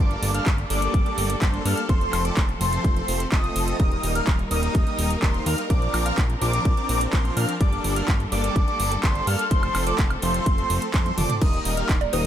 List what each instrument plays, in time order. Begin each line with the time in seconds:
Already playing: string section D4
0.00 analog synth bass G1, supersaw synth G3 A#3 D4 A4 D5, string section G3 A#3 A4, analog synth lead D6
0.11 closed hi-hat
0.22 analog synth bass G1, open hi-hat
0.34 supersaw synth G3 A#3 D4 A4 F5, analog synth lead F6, closed hi-hat
0.46 analog synth bass G1, kick, clap, closed hi-hat
0.58 closed hi-hat
0.70 analog synth bass G1, supersaw synth G3 A#3 D4 A4 D5, analog synth lead D6, open hi-hat
0.82 closed hi-hat
0.94 analog synth bass G1, kick, closed hi-hat
1.06 supersaw synth G3 A#3 D4 A4 D5, analog synth lead D6, closed hi-hat
1.18 analog synth bass G1, open hi-hat
1.30 closed hi-hat
1.42 analog synth bass G1, supersaw synth G3 A#3 D4 A4 C5, analog synth lead C6, kick, clap, closed hi-hat
1.54 closed hi-hat
1.65 analog synth bass G2, supersaw synth G3 A#3 D4 A4 F5, analog synth lead F6, open hi-hat
1.77 closed hi-hat
1.89 analog synth bass F1, supersaw synth F3 A3 C4 A4 C5, string section F3 A3 C4, analog synth lead C6, kick, closed hi-hat
2.01 closed hi-hat
2.13 analog synth bass F1, clap, open hi-hat, high woodblock
2.25 supersaw synth F3 A3 C4 A4 D5, analog synth lead D6, closed hi-hat
2.37 analog synth bass F1, kick, clap, closed hi-hat
2.49 closed hi-hat
2.61 analog synth bass F1, supersaw synth F3 A3 C4 A4 C5, analog synth lead C6, open hi-hat
2.73 closed hi-hat
2.84 analog synth bass F1, kick, closed hi-hat
2.96 supersaw synth F3 A3 C4 A4 C5, analog synth lead C6, closed hi-hat
3.08 analog synth bass F1, open hi-hat
3.20 closed hi-hat
3.32 analog synth bass F1, supersaw synth F3 A3 C4 A4 D#5, analog synth lead D#6, kick, clap, closed hi-hat
3.44 closed hi-hat
3.56 analog synth bass F1, open hi-hat
3.68 closed hi-hat
3.80 analog synth bass D#1, supersaw synth G3 A#3 D#4 A#4, string section G3 A#3 D#4 A#4, analog synth lead D#6, kick, closed hi-hat
3.92 closed hi-hat
4.03 analog synth bass D#1, open hi-hat
4.15 supersaw synth G3 A#3 D#4 A#4 F5, analog synth lead F6, closed hi-hat
4.27 analog synth bass D#1, kick, clap, closed hi-hat
4.39 closed hi-hat
4.51 analog synth bass D#1, supersaw synth G3 A#3 D#4 A#4 D#5, analog synth lead D#6, open hi-hat
4.63 closed hi-hat
4.75 analog synth bass D#1, kick, closed hi-hat
4.87 supersaw synth G3 A#3 D#4 A#4 D#5, analog synth lead D#6, closed hi-hat
4.99 analog synth bass D#1, open hi-hat
5.11 closed hi-hat
5.22 analog synth bass D#1, supersaw synth G3 A#3 D#4 A#4 C5, analog synth lead C6, kick, clap, closed hi-hat
5.34 closed hi-hat
5.46 analog synth bass D#2, supersaw synth G3 A#3 D#4 A#4 F5, analog synth lead F6, open hi-hat
5.58 closed hi-hat
5.70 analog synth bass A#1, string section F3 C4 D4, supersaw synth F3 C4 D4 A#4 D5, analog synth lead D6, kick, closed hi-hat
5.82 closed hi-hat
5.94 analog synth bass A#1, clap, open hi-hat, high woodblock
6.06 supersaw synth F3 C4 D4 A#4 F5, analog synth lead F6, closed hi-hat
6.18 analog synth bass A#1, kick, clap, closed hi-hat
6.30 closed hi-hat
6.41 analog synth bass A#1, supersaw synth F3 C4 D4 A#4 D5, analog synth lead D6, open hi-hat
6.53 closed hi-hat
6.65 analog synth bass A#1, kick, closed hi-hat
6.77 supersaw synth F3 C4 D4 A#4 D5, analog synth lead D6, closed hi-hat
6.89 analog synth bass A#1, open hi-hat
7.01 closed hi-hat
7.13 analog synth bass A#1, supersaw synth F3 C4 D4 A#4 C5, analog synth lead C6, kick, clap, closed hi-hat
7.25 closed hi-hat
7.37 analog synth bass A#2, supersaw synth F3 C4 D4 A#4 F5, analog synth lead F6, open hi-hat
7.49 closed hi-hat
7.60 analog synth bass G1, supersaw synth G3 A#3 D4 A4 D5, string section G3 A#3 A4, analog synth lead D6, kick, closed hi-hat
7.72 closed hi-hat
7.84 analog synth bass G1, open hi-hat
7.96 supersaw synth G3 A#3 D4 A4 F5, analog synth lead F6, closed hi-hat
8.08 analog synth bass G1, kick, clap, closed hi-hat
8.20 closed hi-hat
8.32 analog synth bass G1, supersaw synth G3 A#3 D4 A4 D5, analog synth lead D6, open hi-hat
8.44 closed hi-hat
8.56 analog synth bass G1, kick, closed hi-hat
8.68 supersaw synth G3 A#3 D4 A4 D5, analog synth lead D6, closed hi-hat
8.80 analog synth bass G1, open hi-hat
8.92 closed hi-hat
9.03 analog synth bass G1, supersaw synth G3 A#3 D4 A4 C5, analog synth lead C6, kick, clap, closed hi-hat
9.15 closed hi-hat
9.27 analog synth bass G2, supersaw synth G3 A#3 D4 A4 F5, analog synth lead F6, open hi-hat
9.39 closed hi-hat
9.51 analog synth bass F1, string section F3 A3 C4, supersaw synth F3 A3 C4 A4 C5, analog synth lead C6, kick, closed hi-hat
9.63 closed hi-hat, high woodblock
9.75 analog synth bass F1, clap, open hi-hat, high woodblock
9.87 supersaw synth F3 A3 C4 A4 D5, analog synth lead D6, closed hi-hat
9.98 analog synth bass F1, kick, clap, closed hi-hat
10.10 closed hi-hat, high woodblock
10.22 analog synth bass F1, supersaw synth F3 A3 C4 A4 C5, analog synth lead C6, open hi-hat
10.34 closed hi-hat
10.46 analog synth bass F1, kick, closed hi-hat
10.58 supersaw synth F3 A3 C4 A4 C5, analog synth lead C6, closed hi-hat
10.70 analog synth bass F1, open hi-hat
10.82 closed hi-hat
10.94 analog synth bass F2, supersaw synth F3 A3 C4 A4 C5, analog synth lead C6, kick, clap, closed hi-hat
11.06 closed hi-hat, high tom
11.18 analog synth bass F1, supersaw synth F3 A3 C4 A4 D5, analog synth lead D6, open hi-hat, mid tom
11.30 closed hi-hat, mid tom
11.42 analog synth bass D#1, supersaw synth G3 A#3 D#4 A#4 D#5, string section G3 A#3 D#4 A#4, analog synth lead D#6, kick, closed hi-hat, crash
11.53 closed hi-hat
11.65 analog synth bass D#1, open hi-hat
11.77 supersaw synth G3 A#3 D#4 A#4 F5, analog synth lead F6, closed hi-hat
11.89 analog synth bass D#1, kick, clap, closed hi-hat
12.01 synth pluck D5, closed hi-hat
12.13 analog synth bass D#1, supersaw synth G3 A#3 D#4 A#4 D#5, synth pluck C5, analog synth lead D#6, open hi-hat